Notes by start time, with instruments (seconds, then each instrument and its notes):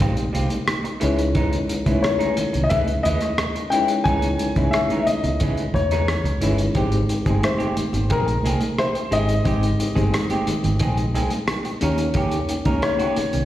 Already playing: reed electric piano G#3 C4 D#4 G4 C5, grand piano D#5
0.00 fingered electric bass A#1, clean electric guitar G3 C4 F4, kick, high conga
0.16 muted clean electric guitar stroke, closed hi-hat, muted conga
0.33 fingered electric bass C2, clean electric guitar G3 C4 F4, closed hi-hat, high conga
0.50 muted clean electric guitar stroke, closed hi-hat
0.68 cross-stick, closed hi-hat, muted conga
0.84 muted clean electric guitar stroke, closed hi-hat, muted conga
1.00 fingered electric bass C#2, clean electric guitar E3 G#3 E4, reed electric piano G#3 C#4 D#4 E4 C#5, closed hi-hat
1.19 muted clean electric guitar stroke, closed hi-hat
1.35 clean electric guitar E3 G#3 D#4, kick, closed hi-hat, muted conga
1.53 closed hi-hat
1.68 muted clean electric guitar stroke, closed hi-hat
1.86 fingered electric bass C#2, clean electric guitar E3 G#3 E4, reed electric piano G#3 C#4 D#4 E4 C5, kick, closed hi-hat, high conga
1.94 reed electric piano C#5
2.03 grand piano C#5, muted clean electric guitar stroke, cross-stick, closed hi-hat, muted conga
2.19 clean electric guitar E3 G#3 D#4, closed hi-hat, high conga
2.37 muted clean electric guitar stroke, muted fingered electric bass stroke, closed hi-hat, low conga
2.53 fingered electric bass C2, muted clean electric guitar stroke, closed hi-hat, low conga
2.64 grand piano D#5
2.69 fingered electric bass C#2, clean electric guitar E3 G#3 E4, grand piano E5, kick, closed hi-hat, high conga
2.87 muted clean electric guitar stroke, closed hi-hat
3.03 fingered electric bass D#2, clean electric guitar E3 G#3 E4, grand piano D#5, closed hi-hat, high conga
3.21 muted clean electric guitar stroke, cross-stick, closed hi-hat
3.38 cross-stick, closed hi-hat, muted conga
3.55 muted clean electric guitar stroke, closed hi-hat
3.70 clean electric guitar E3 G#3, reed electric piano G#3 C#4 D#4 E4 C#5, grand piano G5, closed hi-hat
3.74 clean electric guitar E4
3.88 muted clean electric guitar stroke, closed hi-hat
4.04 fingered electric bass C#2, clean electric guitar E3 G#3 D#4, reed electric piano G#3 C#4 D#4 E4, grand piano G#5, kick, closed hi-hat, muted conga
4.08 reed electric piano C#5
4.22 closed hi-hat, muted conga
4.39 muted clean electric guitar stroke, closed hi-hat
4.56 fingered electric bass C2, clean electric guitar E3 G#3 E4, reed electric piano G#3 C#4 D#4 E4 C#5, kick, closed hi-hat, high conga
4.71 grand piano E5, muted clean electric guitar stroke, cross-stick, closed hi-hat, muted conga
4.90 clean electric guitar E3 G#3 D#4, closed hi-hat, muted conga, high conga
4.99 grand piano E5
5.07 grand piano D#5, muted fingered electric bass stroke, muted clean electric guitar stroke, closed hi-hat, low conga
5.23 fingered electric bass C#2, muted clean electric guitar stroke, closed hi-hat, low conga
5.40 fingered electric bass C#3, clean electric guitar E3 G#3 E4, kick, closed hi-hat, high conga
5.57 closed hi-hat
5.74 fingered electric bass E2, grand piano C#5, muted clean electric guitar stroke, kick, closed hi-hat, high conga
5.91 clean electric guitar E3 G#3 D#4, cross-stick, closed hi-hat
6.08 cross-stick, closed hi-hat
6.24 fingered electric bass C#2, muted clean electric guitar stroke, closed hi-hat, muted conga
6.41 fingered electric bass G1, clean electric guitar E3 G#3 E4, reed electric piano G#3 C#4 D#4 E4 C#5, closed hi-hat, low conga
6.58 muted clean electric guitar stroke, closed hi-hat
6.74 fingered electric bass G#1, reed electric piano G#3 C4 D#4 G4 C5, clean electric guitar G#3 C4 G4, kick, closed hi-hat, muted conga
6.92 closed hi-hat, muted conga
7.09 muted clean electric guitar stroke, closed hi-hat
7.26 fingered electric bass G1, reed electric piano G#3 C4 D#4 G4 C5, clean electric guitar G#3 C4 G#4, kick, closed hi-hat, high conga
7.42 grand piano C5, muted clean electric guitar stroke, cross-stick, closed hi-hat, muted conga
7.58 clean electric guitar G#3 C4 G4, closed hi-hat, high conga
7.76 muted clean electric guitar stroke, muted fingered electric bass stroke, closed hi-hat, low conga
7.93 fingered electric bass G#1, muted clean electric guitar stroke, closed hi-hat, low conga
8.10 fingered electric bass A#1, clean electric guitar G#3 C4 G#4, grand piano A#4, kick, closed hi-hat, muted conga, high conga
8.27 muted clean electric guitar stroke, closed hi-hat
8.43 fingered electric bass C2, clean electric guitar G#3 C4 G#4, closed hi-hat, high conga
8.61 muted clean electric guitar stroke, closed hi-hat
8.77 grand piano C5, cross-stick, closed hi-hat, muted conga
8.95 muted clean electric guitar stroke, closed hi-hat
9.11 fingered electric bass G#1, reed electric piano G#3 C4 D#4 G4 C5, clean electric guitar G#3 C4 G#4, grand piano D#5, closed hi-hat
9.28 muted clean electric guitar stroke, closed hi-hat
9.44 fingered electric bass G#1, reed electric piano G#3 C4 D#4 G4 C5, clean electric guitar G#3 C4 G4, kick, closed hi-hat
9.63 closed hi-hat
9.79 muted clean electric guitar stroke, closed hi-hat
9.95 fingered electric bass G1, reed electric piano G#3 C4 D#4 G4 C5, clean electric guitar G#3 C4 G#4, kick, closed hi-hat, high conga
10.12 muted clean electric guitar stroke, cross-stick, closed hi-hat
10.29 clean electric guitar G#3 C4 G4, closed hi-hat, high conga
10.47 muted fingered electric bass stroke, muted clean electric guitar stroke, closed hi-hat, low conga
10.64 fingered electric bass G#1, muted clean electric guitar stroke, closed hi-hat, low conga
10.79 fingered electric bass A#1, clean electric guitar G#3 C4 G#4, kick, closed hi-hat, muted conga, high conga
10.97 muted clean electric guitar stroke, closed hi-hat, muted conga
11.14 fingered electric bass C2, clean electric guitar G#3 C4 G#4, closed hi-hat, high conga
11.30 muted clean electric guitar stroke, closed hi-hat
11.48 cross-stick, closed hi-hat, muted conga
11.65 muted clean electric guitar stroke, closed hi-hat, muted conga
11.81 fingered electric bass D#2, reed electric piano A#3 C#4 D#4 G4 C#5, clean electric guitar A#3 C#4 A#4, closed hi-hat
11.98 muted clean electric guitar stroke, closed hi-hat
12.14 clean electric guitar A#3 C#4 G4, kick, closed hi-hat, muted conga
12.31 closed hi-hat, muted conga
12.49 muted clean electric guitar stroke, closed hi-hat
12.65 fingered electric bass C#2, reed electric piano A#3 C#4 D#4 G4 C#5, clean electric guitar A#3 C#4 A#4, kick, closed hi-hat, high conga
12.82 grand piano C#5, cross-stick, closed hi-hat, muted conga
12.99 clean electric guitar A#3 C#4 G4, closed hi-hat, muted conga, high conga
13.16 muted clean electric guitar stroke, muted fingered electric bass stroke, closed hi-hat, low conga
13.33 fingered electric bass C2, muted clean electric guitar stroke, closed hi-hat, low conga